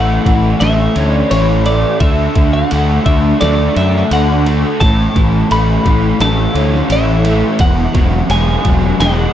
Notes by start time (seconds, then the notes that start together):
Already playing: A1 A2 E3 A3 F#5
0.26 A1 E3, kick, ride
0.60 A1 A3 E5, snare, ride
0.96 D2 C#4, ride
1.14 D5
1.31 A1 E3 C#5, ride
1.66 A3 D5, ride
2.00 D2 D3 E5, kick, ride
2.35 D2 D3, kick, ride
2.53 F#5
2.71 D2 A3, ride
3.06 D2 D3 E5, kick, ride
3.41 D2 A3 D5, snare, ride
3.75 F#2 D4 E5, ride
3.95 snare
4.11 D2 D3 F#5, ride
4.46 A3, ride
4.80 A1 A2 A5, kick, ride
5.16 A1 E3, kick, ride
5.51 A1 A3 B5, ride
5.85 A1 E3, kick, ride
6.20 A1 A3 A5, snare, ride
6.54 D2 C#4, ride
6.74 snare
6.90 A1 E3 E5, ride
7.25 A3, ride
7.59 E1 E2 F#5, kick, ride
7.93 E1 F#3, kick, ride
8.29 E1 G#3 G#5, ride
8.65 E1 F#3, kick, ride
9.00 E1 G#3 F#5, snare, ride